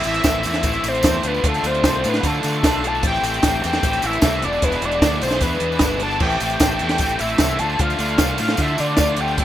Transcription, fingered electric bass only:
0.05 A1
0.24 A1
0.45 E2
0.63 A1
0.84 A1
1.03 E2
1.24 D2
1.43 D2
1.64 D2
1.83 C2
2.05 A2
2.24 D3
2.44 D3
2.64 B1
3.03 A1
3.23 A1
3.43 A1
3.65 E2
3.83 A1
4.04 A1
4.22 C2
4.43 E1
4.63 E1
4.82 E1
5.02 D2
5.23 B1
5.41 E2
5.61 E2
5.80 G1
6.21 A1
6.41 A1
6.61 A1
6.81 E2
6.99 A1
7.21 A1
7.40 C2
7.60 D2
7.80 D2
7.99 D2
8.19 C2
8.40 A2
8.59 D3
8.80 D3
8.98 D2
9.38 A1

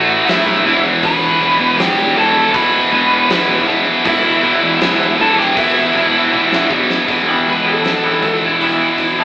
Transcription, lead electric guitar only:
Already playing: F#4 F#5
0.28 E4 E5
1.04 B4 B5
1.79 G4 G5
2.17 A4 A5
2.54 B4 B5
4.07 E4 E5
5.21 A4 A5
5.38 G4 G5
5.57 E4 E5
7.49 B4
7.69 A4
8.46 E4
9.20 D4

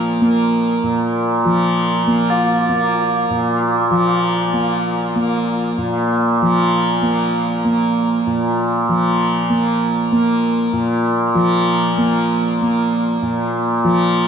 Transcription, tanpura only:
Already playing: A#2 F3 A#3
0.21 A#3
0.83 A#2
1.45 F3
2.07 A#3
2.69 A#3
3.30 A#2
3.91 F3
4.53 A#3
5.16 A#3
5.78 A#2
6.42 F3
7.03 A#3
7.65 A#3
8.27 A#2
8.89 F3
9.50 A#3
10.12 A#3
10.73 A#2
11.35 F3
11.98 A#3
12.62 A#3
13.22 A#2
13.84 F3

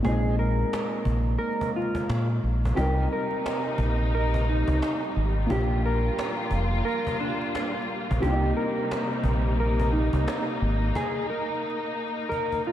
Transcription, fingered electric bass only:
0.05 A#1
1.06 A#1
2.10 A#2
2.44 A#1
2.78 C2
3.78 A#1
4.68 C2
5.16 G#1
5.50 A#1
6.51 F1
8.11 A#1
8.23 C2
9.24 A#1
10.13 C2
10.62 G#1

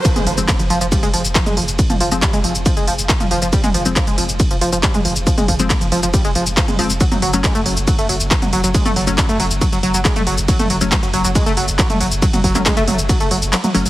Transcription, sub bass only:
0.16 F1
0.27 F1
0.38 F1
0.59 F1
0.70 F1
0.81 F1
1.03 F1
1.14 F1
1.25 F1
1.57 F1
1.68 F1
1.90 F1
2.01 F1
2.12 F1
2.33 F1
2.44 F1
2.55 F1
2.77 F1
2.88 F1
2.99 F1
3.31 F1
3.42 F1
3.64 F1
3.75 F1
3.86 F1
4.07 F1
4.18 F1
4.29 F1
4.51 F1
4.61 F1
4.73 F1
5.05 F1
5.16 F1
5.38 F1
5.48 F1
5.59 F1
5.81 F1
5.92 F1
6.03 F1
6.25 F1
6.35 F1
6.46 F1
6.79 F1
6.90 F1
7.12 F#1
7.22 F#1
7.33 F#1
7.55 F#1
7.66 F#1
7.77 F#1
7.99 F#1
8.09 F#1
8.20 F#1
8.53 F#1
8.64 F#1
8.86 F#1
8.96 F#1
9.07 F#1
9.29 F#1
9.40 F#1
9.51 F#1
9.72 F#1
9.83 F#1
9.94 F#1
10.27 F#1
10.38 F#1
10.59 F#1
10.70 F#1
10.81 F#1
11.03 F#1
11.14 F#1
11.25 F#1
11.47 F#1
11.57 F#1
11.68 F#1
12.01 F#1
12.12 F#1
12.33 F#1
12.44 F#1
12.55 F#1
12.77 F#1
12.88 F#1
12.99 F#1
13.20 F#1
13.31 F#1
13.42 F#1
13.74 F#1
13.86 F#1

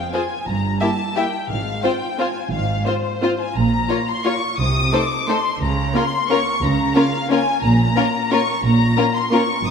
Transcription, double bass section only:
0.47 G1
1.49 G#1
2.52 G#1
3.56 A#1
4.59 C2
5.61 C#2
6.62 C#2
7.64 A#1
8.64 A#1
9.65 F#1

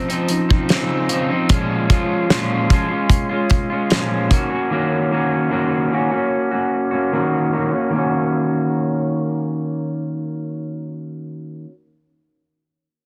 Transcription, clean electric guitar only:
Already playing: F3
0.09 F3 C4 D#4
0.49 F3 C4 D#4
0.70 C#3 F3 C4 D#4
1.09 C#3 F3 C4 D#4
1.29 F3 C4 D#4
1.49 A#2 F3 G#3 C#4 F4
1.89 F3 G#3 C#4 F4
2.30 A#2 F3 G#3 C#4 F4
2.70 F3 G#3 C#4 F4
2.88 C#4 F4
2.92 G#3
3.29 G#3 C#4 F4
3.70 G#3 C#4 F4
3.90 A#2 F3 G#3 C#4 F4
4.29 D#3 A#3 C#4
4.33 F#4
4.50 C#4 F#4
4.54 A#3
4.70 D#3 A#3 C#4 F#4
5.11 D#3 A#3 C#4 F#4
5.50 D#3 A#3 C#4 F#4
5.91 D#3 A#3 C#4 F#4
6.11 A#3 C#4 F#4
6.51 A#3 C#4 F#4
6.91 A#3 C#4 F#4
7.12 D#3 A#3 C#4 F#4
7.52 D#3 A#3 C#4 F#4
7.71 A#3 C#4 F#4
7.90 D#3 A#3
7.96 C#4 F#4

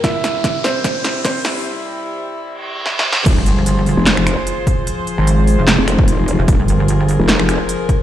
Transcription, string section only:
0.04 C2 C3 G3 E4
3.26 F3 F4 G#4 C5
6.48 A#4

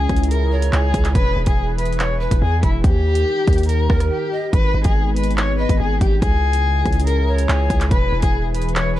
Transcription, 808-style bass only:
0.09 C#2
0.73 C#2
0.94 C#2
1.15 E1
1.36 E1
1.47 E1
2.31 E1
2.42 E2
2.63 E1
2.84 D#2
3.48 D#2
3.90 D#2
4.53 G#1
4.74 G#1
4.85 G#1
5.69 G#1
5.80 G#1
6.01 G#1
6.22 C#2
6.86 C#2
7.49 C#2
7.70 C#2
7.91 E1
8.12 E1
8.23 E1

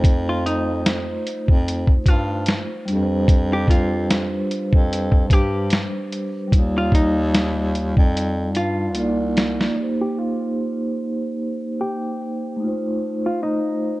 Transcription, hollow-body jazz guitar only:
0.29 F4
0.46 D#4
2.08 F4
3.53 G4
3.70 F4
5.33 G4
6.78 F4
6.94 D#4
8.57 F4
10.01 G4
10.18 F4
11.81 G4
13.26 F4
13.43 D#4

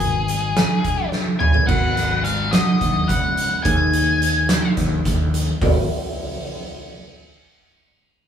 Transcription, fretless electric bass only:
Already playing: G#1
1.40 B1
1.69 G#1
2.81 D#2
3.09 C#2
3.65 D#2
4.77 D#2
5.06 D#2
5.62 G#1

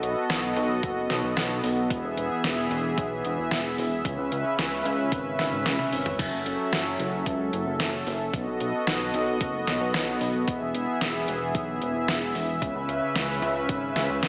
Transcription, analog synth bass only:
0.03 B1
0.29 B1
0.56 B1
0.83 F#1
1.10 B1
1.24 B1
1.37 B1
1.64 B1
1.90 E1
2.04 E1
2.17 E1
2.44 E1
2.71 E1
2.98 B1
3.25 E1
3.38 E1
3.51 E1
3.78 E1
4.05 C#2
4.18 C#2
4.32 C#2
4.59 C#2
4.85 C#2
5.12 G#1
5.38 G#1
5.52 G#1
5.66 C#2
5.92 G#1
6.19 F#1
6.33 F#1
6.46 F#1
6.73 F#1
7.00 F#1
7.26 C#2
7.53 F#1
7.67 F#1
7.80 F#1
8.07 F#1
8.33 B1
8.47 B1
8.61 B1
8.88 B1
9.14 B1
9.41 F#1
9.68 B1
9.81 B1
9.94 B1
10.21 B1
10.48 E1
10.61 E1
10.75 E1
11.01 E1
11.28 E1
11.55 B1
11.81 E1
11.95 E1
12.08 E1
12.35 E1
12.62 C#2
12.75 C#2
12.89 C#2
13.15 C#2
13.42 C#2
13.69 G#1
13.96 C#2
14.09 C#2
14.22 C#2

